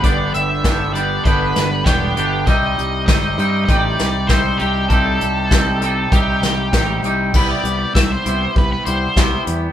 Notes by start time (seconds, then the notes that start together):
0.02 G1 G2 D3 G3 B3 D4 G4 D5, kick, closed hi-hat
0.34 G1 E5, closed hi-hat
0.64 G1 G2 D3 G3 B3 D4 G4, kick, snare, closed hi-hat
0.94 G2 D3 G3 B3 D4 G4 D5, closed hi-hat
1.24 G1 G2 D3 G3 B3 D4 B4, kick, closed hi-hat
1.28 G4
1.56 G1, snare, closed hi-hat
1.84 E1 G2 D3 G3 B3 D4 G4, kick, snare, closed hi-hat
2.16 G1 G2 D3 G3 B3 D4 G4, closed hi-hat
2.46 C2 C3 G3 C4 D#4 G4 D#5, kick, closed hi-hat
2.78 C2, closed hi-hat
3.06 G1 C3 G3 C4 D#4 G4 D#5, kick, snare, closed hi-hat
3.38 G2 C3 G3 C4 D#4 G4, closed hi-hat
3.65 A1 C3 G3 C4 D#5, kick, closed hi-hat
3.70 D#4 G4
3.76 D5
3.99 C2, snare, closed hi-hat
4.27 C2 C3 G3 C4 D#4 G4 C5, kick, snare, closed hi-hat
4.58 C2 C3 G3 C4 D#4 G4, closed hi-hat
4.88 C2 C3 G3 C4 D#4 G4 A4, kick, closed hi-hat
5.21 C2, closed hi-hat
5.51 C2 C3 G3 C4 D#4 G4, kick, snare, closed hi-hat
5.82 C3 G3 C4 D#4 G4, closed hi-hat
6.12 C2 C3 G3 C4 D#4 G4, kick, closed hi-hat
6.42 C2, snare, closed hi-hat
6.73 A1 C3 G3 C4 D#4 G4, kick, snare, closed hi-hat
7.03 C2 C3 G3 C4 D#4 G4, closed hi-hat
7.34 C2 C3 G3 B3 E4 G4 B4, kick, crash
7.51 D5
7.64 C2, closed hi-hat
7.95 C2 E5, kick, snare
8.12 C5
8.26 C2 C3 G3 B3 E4 G4, closed hi-hat
8.56 C2 B4, kick
8.73 B4
8.85 C2 C3 G3 B3 E4 G4 C5, closed hi-hat
9.16 C2 C3 G3 B3 E4 G4, kick, snare
9.47 E2, closed hi-hat